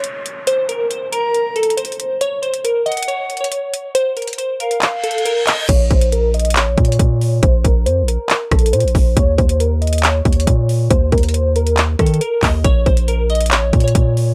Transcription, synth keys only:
0, 0, Header, 1, 2, 480
1, 0, Start_track
1, 0, Key_signature, -5, "minor"
1, 0, Tempo, 434783
1, 520, Time_signature, 4, 2, 24, 8
1, 15834, End_track
2, 0, Start_track
2, 0, Title_t, "Synth keys"
2, 0, Program_c, 0, 88
2, 0, Note_on_c, 0, 73, 67
2, 483, Note_off_c, 0, 73, 0
2, 521, Note_on_c, 0, 72, 95
2, 712, Note_off_c, 0, 72, 0
2, 759, Note_on_c, 0, 70, 77
2, 950, Note_off_c, 0, 70, 0
2, 997, Note_on_c, 0, 72, 82
2, 1189, Note_off_c, 0, 72, 0
2, 1240, Note_on_c, 0, 70, 84
2, 1691, Note_off_c, 0, 70, 0
2, 1720, Note_on_c, 0, 69, 84
2, 1911, Note_off_c, 0, 69, 0
2, 1956, Note_on_c, 0, 72, 79
2, 2409, Note_off_c, 0, 72, 0
2, 2441, Note_on_c, 0, 73, 98
2, 2632, Note_off_c, 0, 73, 0
2, 2675, Note_on_c, 0, 72, 90
2, 2868, Note_off_c, 0, 72, 0
2, 2919, Note_on_c, 0, 70, 73
2, 3110, Note_off_c, 0, 70, 0
2, 3156, Note_on_c, 0, 75, 85
2, 3349, Note_off_c, 0, 75, 0
2, 3398, Note_on_c, 0, 73, 80
2, 3737, Note_off_c, 0, 73, 0
2, 3759, Note_on_c, 0, 73, 77
2, 4323, Note_off_c, 0, 73, 0
2, 4359, Note_on_c, 0, 72, 105
2, 4550, Note_off_c, 0, 72, 0
2, 4599, Note_on_c, 0, 70, 71
2, 4790, Note_off_c, 0, 70, 0
2, 4836, Note_on_c, 0, 72, 83
2, 5029, Note_off_c, 0, 72, 0
2, 5082, Note_on_c, 0, 70, 84
2, 5272, Note_off_c, 0, 70, 0
2, 5559, Note_on_c, 0, 69, 78
2, 5751, Note_off_c, 0, 69, 0
2, 5799, Note_on_c, 0, 70, 77
2, 5991, Note_off_c, 0, 70, 0
2, 6039, Note_on_c, 0, 75, 73
2, 6231, Note_off_c, 0, 75, 0
2, 6279, Note_on_c, 0, 73, 102
2, 6471, Note_off_c, 0, 73, 0
2, 6520, Note_on_c, 0, 72, 79
2, 6711, Note_off_c, 0, 72, 0
2, 6761, Note_on_c, 0, 70, 84
2, 6952, Note_off_c, 0, 70, 0
2, 7002, Note_on_c, 0, 75, 94
2, 7192, Note_off_c, 0, 75, 0
2, 7240, Note_on_c, 0, 73, 81
2, 7578, Note_off_c, 0, 73, 0
2, 7600, Note_on_c, 0, 73, 71
2, 8164, Note_off_c, 0, 73, 0
2, 8201, Note_on_c, 0, 72, 97
2, 8392, Note_off_c, 0, 72, 0
2, 8439, Note_on_c, 0, 70, 79
2, 8630, Note_off_c, 0, 70, 0
2, 8677, Note_on_c, 0, 72, 83
2, 8870, Note_off_c, 0, 72, 0
2, 8920, Note_on_c, 0, 70, 82
2, 9371, Note_off_c, 0, 70, 0
2, 9400, Note_on_c, 0, 69, 88
2, 9591, Note_off_c, 0, 69, 0
2, 9637, Note_on_c, 0, 72, 85
2, 10089, Note_off_c, 0, 72, 0
2, 10122, Note_on_c, 0, 73, 105
2, 10312, Note_off_c, 0, 73, 0
2, 10355, Note_on_c, 0, 72, 90
2, 10548, Note_off_c, 0, 72, 0
2, 10599, Note_on_c, 0, 70, 73
2, 10791, Note_off_c, 0, 70, 0
2, 10837, Note_on_c, 0, 75, 91
2, 11029, Note_off_c, 0, 75, 0
2, 11079, Note_on_c, 0, 73, 85
2, 11417, Note_off_c, 0, 73, 0
2, 11440, Note_on_c, 0, 73, 75
2, 12004, Note_off_c, 0, 73, 0
2, 12040, Note_on_c, 0, 72, 102
2, 12231, Note_off_c, 0, 72, 0
2, 12278, Note_on_c, 0, 70, 70
2, 12470, Note_off_c, 0, 70, 0
2, 12516, Note_on_c, 0, 72, 84
2, 12709, Note_off_c, 0, 72, 0
2, 12762, Note_on_c, 0, 70, 84
2, 12952, Note_off_c, 0, 70, 0
2, 13239, Note_on_c, 0, 69, 77
2, 13431, Note_off_c, 0, 69, 0
2, 13479, Note_on_c, 0, 70, 80
2, 13671, Note_off_c, 0, 70, 0
2, 13720, Note_on_c, 0, 75, 71
2, 13911, Note_off_c, 0, 75, 0
2, 13960, Note_on_c, 0, 73, 106
2, 14151, Note_off_c, 0, 73, 0
2, 14199, Note_on_c, 0, 72, 78
2, 14391, Note_off_c, 0, 72, 0
2, 14441, Note_on_c, 0, 70, 82
2, 14632, Note_off_c, 0, 70, 0
2, 14682, Note_on_c, 0, 75, 96
2, 14872, Note_off_c, 0, 75, 0
2, 14919, Note_on_c, 0, 73, 80
2, 15258, Note_off_c, 0, 73, 0
2, 15279, Note_on_c, 0, 73, 71
2, 15834, Note_off_c, 0, 73, 0
2, 15834, End_track
0, 0, End_of_file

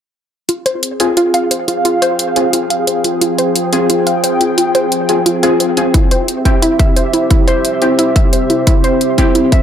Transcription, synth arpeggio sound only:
0, 0, Header, 1, 2, 480
1, 0, Start_track
1, 0, Key_signature, -4, "minor"
1, 0, Tempo, 340909
1, 687, Time_signature, 4, 2, 24, 8
1, 13553, End_track
2, 0, Start_track
2, 0, Title_t, "Synth arpeggio sound"
2, 0, Program_c, 0, 84
2, 686, Note_on_c, 0, 65, 100
2, 915, Note_off_c, 0, 65, 0
2, 926, Note_on_c, 0, 72, 100
2, 1154, Note_off_c, 0, 72, 0
2, 1646, Note_on_c, 0, 65, 101
2, 1813, Note_off_c, 0, 65, 0
2, 1886, Note_on_c, 0, 77, 96
2, 2053, Note_off_c, 0, 77, 0
2, 2126, Note_on_c, 0, 72, 74
2, 2354, Note_off_c, 0, 72, 0
2, 2366, Note_on_c, 0, 65, 76
2, 2533, Note_off_c, 0, 65, 0
2, 2606, Note_on_c, 0, 65, 100
2, 2834, Note_off_c, 0, 65, 0
2, 2845, Note_on_c, 0, 72, 100
2, 3074, Note_off_c, 0, 72, 0
2, 3566, Note_on_c, 0, 65, 103
2, 3733, Note_off_c, 0, 65, 0
2, 3806, Note_on_c, 0, 77, 97
2, 3973, Note_off_c, 0, 77, 0
2, 4046, Note_on_c, 0, 72, 76
2, 4274, Note_off_c, 0, 72, 0
2, 4286, Note_on_c, 0, 65, 74
2, 4453, Note_off_c, 0, 65, 0
2, 4525, Note_on_c, 0, 65, 100
2, 4754, Note_off_c, 0, 65, 0
2, 4766, Note_on_c, 0, 72, 101
2, 4995, Note_off_c, 0, 72, 0
2, 5486, Note_on_c, 0, 65, 99
2, 5653, Note_off_c, 0, 65, 0
2, 5726, Note_on_c, 0, 77, 98
2, 5893, Note_off_c, 0, 77, 0
2, 5966, Note_on_c, 0, 72, 73
2, 6195, Note_off_c, 0, 72, 0
2, 6206, Note_on_c, 0, 65, 77
2, 6373, Note_off_c, 0, 65, 0
2, 6446, Note_on_c, 0, 65, 102
2, 6674, Note_off_c, 0, 65, 0
2, 6686, Note_on_c, 0, 72, 103
2, 6914, Note_off_c, 0, 72, 0
2, 7405, Note_on_c, 0, 65, 103
2, 7573, Note_off_c, 0, 65, 0
2, 7645, Note_on_c, 0, 77, 98
2, 7813, Note_off_c, 0, 77, 0
2, 7887, Note_on_c, 0, 72, 75
2, 8115, Note_off_c, 0, 72, 0
2, 8127, Note_on_c, 0, 65, 76
2, 8294, Note_off_c, 0, 65, 0
2, 8367, Note_on_c, 0, 64, 102
2, 8595, Note_off_c, 0, 64, 0
2, 8608, Note_on_c, 0, 72, 99
2, 8835, Note_off_c, 0, 72, 0
2, 9326, Note_on_c, 0, 64, 104
2, 9493, Note_off_c, 0, 64, 0
2, 9566, Note_on_c, 0, 76, 102
2, 9733, Note_off_c, 0, 76, 0
2, 9806, Note_on_c, 0, 72, 77
2, 10035, Note_off_c, 0, 72, 0
2, 10047, Note_on_c, 0, 64, 76
2, 10213, Note_off_c, 0, 64, 0
2, 10286, Note_on_c, 0, 64, 102
2, 10515, Note_off_c, 0, 64, 0
2, 10526, Note_on_c, 0, 72, 101
2, 10755, Note_off_c, 0, 72, 0
2, 11246, Note_on_c, 0, 64, 102
2, 11413, Note_off_c, 0, 64, 0
2, 11485, Note_on_c, 0, 76, 98
2, 11653, Note_off_c, 0, 76, 0
2, 11726, Note_on_c, 0, 72, 73
2, 11955, Note_off_c, 0, 72, 0
2, 11966, Note_on_c, 0, 64, 75
2, 12133, Note_off_c, 0, 64, 0
2, 12207, Note_on_c, 0, 64, 103
2, 12435, Note_off_c, 0, 64, 0
2, 12447, Note_on_c, 0, 72, 101
2, 12675, Note_off_c, 0, 72, 0
2, 13166, Note_on_c, 0, 64, 103
2, 13333, Note_off_c, 0, 64, 0
2, 13407, Note_on_c, 0, 76, 102
2, 13553, Note_off_c, 0, 76, 0
2, 13553, End_track
0, 0, End_of_file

